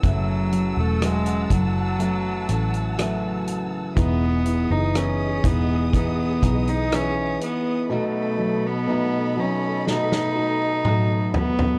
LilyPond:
<<
  \new Staff \with { instrumentName = "String section" } { \time 4/4 \key e \major \tempo 4 = 61 <fis'' a'' e'''>1 | <gis' dis'' dis'''>1 | <a' dis'' b''>1 | }
  \new Staff \with { instrumentName = "Cello" } { \time 4/4 \key e \major fis8. a16 gis8 fis2 r8 | b8. dis'16 cis'8 b8 b8. dis'16 cis'8 b8 | a8. b8. cis'8 dis'4. b8 | }
  \new Staff \with { instrumentName = "Nylon-string guitar" } { \time 4/4 \key e \major <fis, cis e a cis' fis'>4 <fis, cis e cis' fis'>8 <e a cis' fis'>8 <e a cis' fis'>8 <e a cis' fis'>8 <fis, cis e a cis' fis'>4 | <e b dis' gis'>4 <e b dis' gis'>8 <b dis' gis'>8 <e b dis' gis'>8 <b dis' gis'>8 <e b dis' gis'>4 | <b, fis a dis' fis'>4 <b, fis a dis' fis'>8 <a dis' fis'>8 <fis a dis' fis'>8 <a dis' fis'>8 <b, fis a dis' fis'>4 | }
  \new Staff \with { instrumentName = "Grand piano" } { \clef bass \time 4/4 \key e \major fis8 fis8 fis8 fis8 fis4 fis4 | e8 e8 e8 e8 e4 e4 | b,8 fis8 b,8 fis8 b,4 fis4 | }
  \new Staff \with { instrumentName = "Fingered electric bass" } { \clef bass \time 4/4 \key e \major fis,,8. e,,8. fis,,4 a,,4. | e,,8. fis,,8. e,,4 b,,4 r8 | r1 | }
  \new DrumStaff \with { instrumentName = "Drums" } \drummode { \time 4/4 <hh bd>8 hh8 <hh ss>16 hh16 <hh bd>8 hh8 hh16 hh16 <hh ss>8 hh8 | <hh bd>8 hh8 <hh ss>8 <hh bd>8 <hh bd>8 <hh bd>16 hh16 <hh ss>8 hh8 | r4 r4 sn16 sn8. toml8 tomfh16 tomfh16 | }
>>